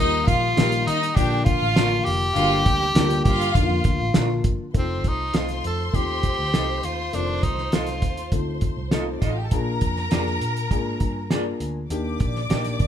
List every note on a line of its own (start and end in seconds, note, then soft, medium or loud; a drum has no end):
0.00 0.29 D#2 loud
0.00 0.43 D#3 medium
0.00 0.43 G3 medium
0.00 0.43 A#3 medium
0.00 0.22 D#4 loud
0.00 0.29 D#4 loud
0.00 0.43 D#4 medium
0.00 0.21 D#5 loud
0.04 0.47 G4 medium
0.26 0.53 A#1 medium
0.26 0.51 F4 medium
0.26 0.88 F4 loud
0.26 0.51 F5 loud
0.26 kick loud
0.26 closed hi-hat medium
0.56 0.83 A#1 loud
0.56 1.03 D#3 medium
0.56 1.03 G3 medium
0.56 1.03 A#3 medium
0.56 0.67 D#4 medium
0.56 1.03 D#4 medium
0.56 0.81 F4 loud
0.56 0.67 G4 medium
0.56 1.03 G4 medium
0.56 0.68 A#4 medium
0.56 0.81 F5 loud
0.56 snare loud
0.56 closed hi-hat medium
0.72 closed hi-hat medium
0.86 1.12 D#3 medium
0.86 1.17 D#4 medium
0.86 1.11 D#4 loud
0.86 1.11 D#5 loud
0.86 closed hi-hat medium
1.03 closed hi-hat medium
1.15 1.55 A#1 medium
1.15 1.63 D3 medium
1.15 1.63 F3 medium
1.15 1.63 A#3 medium
1.15 1.46 D4 medium
1.15 1.63 D4 medium
1.15 1.63 F4 medium
1.15 1.41 G4 medium
1.15 1.41 G5 medium
1.15 kick medium
1.15 closed hi-hat medium
1.44 2.06 F4 loud
1.44 2.03 F4 loud
1.44 2.03 F5 loud
1.44 kick loud
1.44 closed hi-hat medium
1.61 1.99 A1 medium
1.76 2.22 D3 medium
1.76 2.23 F3 medium
1.76 2.22 A#3 medium
1.76 1.86 D4 loud
1.76 2.23 D4 medium
1.76 1.87 F4 medium
1.76 2.23 F4 medium
1.76 1.87 A#4 loud
1.76 snare loud
1.76 closed hi-hat medium
2.05 2.32 F1 medium
2.05 3.24 G4 loud
2.05 open hi-hat medium
2.35 2.61 G1 loud
2.35 2.81 D3 medium
2.35 2.81 G3 medium
2.35 2.82 A#3 medium
2.35 2.82 D4 medium
2.35 2.59 F4 loud
2.35 2.43 F#4 medium
2.35 2.59 F5 loud
2.35 closed hi-hat medium
2.43 2.85 G4 medium
2.66 2.91 D2 medium
2.66 2.90 G4 medium
2.66 2.90 G5 medium
2.66 kick loud
2.66 closed hi-hat medium
2.81 snare soft
2.95 3.21 D2 medium
2.95 3.41 D3 medium
2.95 3.42 G3 medium
2.95 3.42 A#3 medium
2.95 3.05 D4 medium
2.95 3.42 D4 medium
2.95 3.42 F4 medium
2.95 3.05 G4 medium
2.95 3.21 G4 medium
2.95 3.06 A#4 loud
2.95 3.21 G5 medium
2.95 snare loud
2.95 closed hi-hat loud
3.10 snare soft
3.10 closed hi-hat medium
3.24 3.51 G2 loud
3.24 3.82 F4 loud
3.24 3.57 G4 loud
3.24 3.82 F5 loud
3.24 kick loud
3.24 closed hi-hat medium
3.41 closed hi-hat medium
3.55 3.68 F1 loud
3.55 4.01 D3 medium
3.55 4.01 F3 medium
3.55 4.01 A#3 medium
3.55 4.01 D4 medium
3.55 3.62 D#4 medium
3.55 4.44 F4 medium
3.55 kick loud
3.55 closed hi-hat medium
3.63 4.05 F4 medium
3.70 3.83 F2 loud
3.84 3.98 D2 medium
3.84 kick loud
3.84 closed hi-hat medium
4.00 4.12 A1 medium
4.14 4.40 A#1 medium
4.14 4.60 D3 medium
4.14 4.61 F3 medium
4.14 4.60 A#3 medium
4.14 4.25 D4 medium
4.14 4.61 D4 medium
4.14 4.21 E4 medium
4.14 4.25 F4 medium
4.14 4.25 A#4 medium
4.14 snare loud
4.14 closed hi-hat medium
4.22 4.64 F4 medium
4.44 4.57 G1 medium
4.44 kick medium
4.44 closed hi-hat medium
4.74 5.04 F1 loud
4.74 5.20 A3 medium
4.74 5.20 C4 medium
4.74 5.20 D#4 medium
4.74 5.20 F4 medium
4.74 8.90 C5 medium
4.74 8.90 C6 medium
4.74 kick loud
4.74 closed hi-hat medium
4.78 5.10 C4 medium
5.04 5.30 C2 medium
5.04 5.38 D#4 medium
5.04 kick medium
5.04 closed hi-hat medium
5.34 5.60 C2 medium
5.34 5.80 A3 medium
5.34 5.80 C4 medium
5.34 5.80 D#4 medium
5.34 5.44 F4 medium
5.34 5.80 F4 medium
5.34 5.65 F4 medium
5.34 5.44 A4 medium
5.34 5.45 D#5 medium
5.34 snare loud
5.34 closed hi-hat medium
5.49 snare soft
5.49 closed hi-hat soft
5.64 5.89 F2 medium
5.64 5.87 A4 medium
5.64 closed hi-hat medium
5.87 5.97 A4 medium
5.93 6.32 D#2 medium
5.93 6.39 A3 medium
5.93 6.39 C4 medium
5.93 6.39 D#4 medium
5.93 6.39 F4 medium
5.93 6.87 G4 loud
5.93 kick medium
5.93 closed hi-hat medium
6.23 kick medium
6.23 closed hi-hat medium
6.39 6.51 D2 medium
6.53 6.79 C2 loud
6.53 6.99 A3 medium
6.53 6.99 C4 medium
6.53 6.99 D#4 medium
6.53 6.63 F4 medium
6.53 6.99 G4 medium
6.53 6.63 A4 medium
6.53 6.64 D#5 medium
6.53 snare loud
6.53 closed hi-hat medium
6.83 7.09 D#2 medium
6.83 7.15 F4 medium
6.83 closed hi-hat medium
7.13 7.39 F1 loud
7.13 7.59 D#3 medium
7.13 7.59 A3 medium
7.13 7.59 C4 medium
7.13 7.45 D4 medium
7.13 7.59 F4 medium
7.13 closed hi-hat medium
7.43 7.68 C2 medium
7.43 7.75 D#4 medium
7.43 kick medium
7.43 closed hi-hat medium
7.58 snare soft
7.72 8.02 C2 medium
7.72 8.19 A3 medium
7.72 8.19 C4 medium
7.72 8.19 D#4 medium
7.72 7.83 F4 medium
7.72 8.19 F4 medium
7.72 8.33 F4 medium
7.72 7.83 A4 medium
7.72 7.83 D#5 medium
7.72 snare loud
7.72 closed hi-hat medium
7.87 snare soft
7.87 closed hi-hat soft
8.02 8.28 D#2 medium
8.02 kick medium
8.02 closed hi-hat medium
8.17 closed hi-hat medium
8.32 8.70 D2 medium
8.32 8.78 A3 medium
8.32 8.78 C4 medium
8.32 8.79 D#4 medium
8.32 8.79 F4 medium
8.32 kick medium
8.32 closed hi-hat medium
8.61 kick medium
8.61 closed hi-hat medium
8.77 9.15 C2 medium
8.91 9.38 A3 medium
8.91 9.38 C4 medium
8.91 9.38 D#4 medium
8.91 9.02 F4 medium
8.91 9.38 F4 medium
8.91 9.02 A4 medium
8.91 9.02 D#5 medium
8.91 snare loud
8.91 closed hi-hat medium
9.00 9.07 A#3 medium
9.00 9.07 A#4 medium
9.08 9.15 C4 medium
9.08 9.15 C5 medium
9.15 9.22 D4 medium
9.15 9.22 D5 medium
9.21 9.48 A1 medium
9.21 9.30 D#4 medium
9.21 9.30 F4 medium
9.21 9.30 A4 medium
9.21 9.30 D#5 medium
9.21 kick medium
9.21 closed hi-hat medium
9.30 9.37 F4 medium
9.30 9.37 F5 medium
9.37 9.45 G4 medium
9.37 9.45 G5 medium
9.45 9.52 A4 medium
9.45 9.52 A5 medium
9.51 9.77 A#1 loud
9.51 9.98 A#3 medium
9.51 9.98 D4 medium
9.51 9.98 F4 medium
9.51 9.98 G#4 loud
9.51 11.57 A#4 medium
9.51 11.58 A#5 loud
9.51 kick loud
9.51 closed hi-hat medium
9.81 10.07 F2 medium
9.81 kick medium
9.81 closed hi-hat medium
9.97 snare soft
10.11 10.37 F2 medium
10.11 10.57 A#3 medium
10.11 10.58 D4 medium
10.11 10.21 F4 medium
10.11 10.58 F4 medium
10.11 10.18 G4 medium
10.11 10.22 G#4 medium
10.11 10.22 D5 medium
10.11 snare loud
10.11 closed hi-hat medium
10.18 10.61 G#4 medium
10.27 snare soft
10.41 10.67 A#2 loud
10.41 closed hi-hat medium
10.57 closed hi-hat medium
10.70 10.97 G#2 medium
10.70 11.17 A#3 medium
10.70 11.17 D4 medium
10.70 11.17 F4 medium
10.70 11.18 G#4 medium
10.70 kick loud
10.70 closed hi-hat medium
11.00 11.52 G2 medium
11.00 kick medium
11.00 closed hi-hat medium
11.30 11.77 A#3 medium
11.30 11.77 D4 medium
11.30 11.41 F4 medium
11.30 11.77 F4 medium
11.30 11.77 G#4 medium
11.30 11.41 G#4 medium
11.30 11.42 D5 medium
11.30 snare loud
11.30 closed hi-hat medium
11.60 11.86 D2 medium
11.60 closed hi-hat medium
11.90 12.16 D#2 loud
11.90 12.37 A#3 medium
11.90 12.37 D4 medium
11.90 12.37 D#4 medium
11.90 12.37 G4 loud
11.90 12.87 D5 medium
11.90 12.87 D6 loud
11.90 closed hi-hat medium
12.20 12.46 A#1 medium
12.20 kick medium
12.20 closed hi-hat medium
12.36 snare soft
12.50 12.76 A#1 loud
12.50 12.87 A#3 medium
12.50 12.87 D4 medium
12.50 12.60 D#4 medium
12.50 12.87 D#4 medium
12.50 12.87 G4 medium
12.50 12.61 G4 medium
12.50 12.61 D5 loud
12.50 snare loud
12.50 closed hi-hat medium
12.64 snare soft
12.64 closed hi-hat medium
12.80 12.87 D#3 medium
12.80 kick medium
12.80 closed hi-hat medium